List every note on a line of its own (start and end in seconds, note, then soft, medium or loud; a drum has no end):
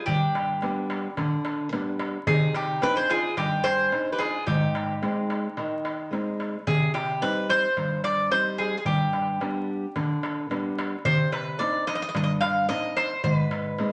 0.06 0.61 G2 medium
0.06 1.13 D4 medium
0.06 1.13 G4 medium
0.06 darbuka dum medium
0.22 darbuka tek soft
0.35 darbuka tek medium
0.49 darbuka tek soft
0.62 1.06 G3 soft
0.62 1.07 B3 soft
0.62 1.07 D4 medium
0.62 darbuka tek medium
0.90 darbuka tek medium
1.04 darbuka tek soft
1.17 1.71 D3 medium
1.17 darbuka tek medium
1.17 darbuka dum medium
1.31 darbuka tek soft
1.45 darbuka tek medium
1.72 2.16 G3 soft
1.72 2.17 B3 soft
1.72 2.17 D4 soft
1.72 darbuka tek medium
1.99 darbuka tek medium
2.27 2.81 C3 medium
2.27 2.53 D#4 medium
2.27 2.53 G#4 loud
2.27 darbuka dum loud
2.41 darbuka tek soft
2.54 2.80 D#4 medium
2.54 2.84 G4 medium
2.54 darbuka tek medium
2.68 darbuka tek soft
2.82 3.26 C4 medium
2.82 3.26 D4 soft
2.82 3.27 D#4 medium
2.82 2.95 G4 medium
2.82 2.96 B4 loud
2.82 darbuka tek medium
2.95 3.09 G#4 medium
2.95 3.11 C5 medium
3.10 3.35 F4 medium
3.10 3.36 G#4 loud
3.10 darbuka tek medium
3.23 darbuka tek soft
3.37 3.91 G2 medium
3.37 3.63 D#4 medium
3.37 3.66 G4 medium
3.37 darbuka tek medium
3.37 darbuka dum medium
3.51 darbuka tek soft
3.64 4.09 G#4 medium
3.64 4.12 C5 loud
3.64 darbuka tek medium
3.92 4.36 C4 soft
3.92 4.36 D4 soft
3.92 4.37 D#4 soft
3.92 darbuka tek medium
4.12 4.19 G4 medium
4.12 4.19 B4 medium
4.18 4.46 F4 medium
4.18 4.45 G#4 medium
4.18 darbuka tek medium
4.47 5.01 G#2 medium
4.47 6.08 D#4 medium
4.47 6.08 G4 medium
4.47 darbuka dum loud
4.62 darbuka tek soft
4.75 darbuka tek medium
4.89 darbuka tek soft
5.02 5.46 G#3 medium
5.02 5.46 C4 soft
5.02 5.46 D#4 medium
5.02 darbuka tek medium
5.17 darbuka tek soft
5.30 darbuka tek medium
5.44 darbuka tek soft
5.57 6.10 D#3 medium
5.57 darbuka tek medium
5.71 darbuka tek soft
5.85 darbuka tek medium
6.11 6.55 G#3 soft
6.11 6.55 C4 soft
6.11 6.56 D#4 soft
6.11 darbuka tek medium
6.40 darbuka tek medium
6.54 darbuka tek soft
6.67 7.20 C3 medium
6.67 6.92 G#4 medium
6.67 darbuka dum medium
6.81 darbuka tek soft
6.94 7.22 G4 medium
6.94 darbuka tek medium
7.08 darbuka tek soft
7.21 7.65 G3 soft
7.21 7.65 C4 soft
7.21 7.66 D#4 medium
7.21 7.47 B4 medium
7.21 darbuka tek medium
7.49 8.00 C5 loud
7.49 darbuka tek medium
7.63 darbuka tek soft
7.77 8.30 G2 medium
7.77 darbuka tek medium
7.77 darbuka dum medium
8.04 8.29 D5 medium
8.04 darbuka tek medium
8.31 8.75 G3 soft
8.31 8.75 C4 soft
8.31 8.75 D#4 medium
8.31 8.57 C5 loud
8.31 darbuka tek medium
8.58 8.76 G#4 medium
8.58 darbuka tek medium
8.77 8.85 G#4 medium
8.85 9.39 G2 medium
8.85 9.92 G4 medium
8.85 darbuka dum medium
9.00 darbuka tek soft
9.13 darbuka tek medium
9.27 darbuka tek soft
9.40 9.84 G3 medium
9.40 9.85 B3 soft
9.40 9.85 D4 medium
9.40 darbuka tek medium
9.96 10.49 D3 medium
9.96 darbuka tek medium
9.96 darbuka dum medium
10.09 darbuka tek soft
10.23 darbuka tek medium
10.50 10.94 G3 soft
10.50 10.94 B3 soft
10.50 10.94 D4 medium
10.50 darbuka tek medium
10.78 darbuka tek medium
11.05 11.58 C3 medium
11.05 11.32 C5 loud
11.05 darbuka dum loud
11.18 darbuka tek soft
11.32 11.58 B4 medium
11.32 darbuka tek medium
11.46 darbuka tek soft
11.59 12.04 C4 soft
11.59 12.04 D4 medium
11.59 12.04 D#4 medium
11.59 11.85 D5 medium
11.59 darbuka tek medium
11.87 11.94 D#5 medium
11.87 darbuka tek medium
11.95 12.01 D#5 medium
12.01 12.08 D#5 medium
12.01 darbuka tek soft
12.09 12.15 D#5 medium
12.14 12.68 G2 medium
12.14 12.22 D#5 medium
12.14 darbuka tek medium
12.14 darbuka dum medium
12.23 12.32 D#5 medium
12.29 darbuka tek soft
12.41 12.68 F5 medium
12.41 darbuka tek medium
12.69 13.13 C4 soft
12.69 13.13 D4 soft
12.69 13.13 D#4 medium
12.69 12.97 D#5 loud
12.69 darbuka tek medium
12.96 13.22 C5 loud
12.96 darbuka tek medium
13.24 13.77 G#2 medium
13.24 13.92 B4 medium
13.24 darbuka dum medium
13.38 darbuka tek soft
13.51 darbuka tek medium
13.65 darbuka tek soft
13.79 13.92 G#3 soft
13.79 13.92 C4 soft
13.79 13.92 D#4 medium
13.79 darbuka tek medium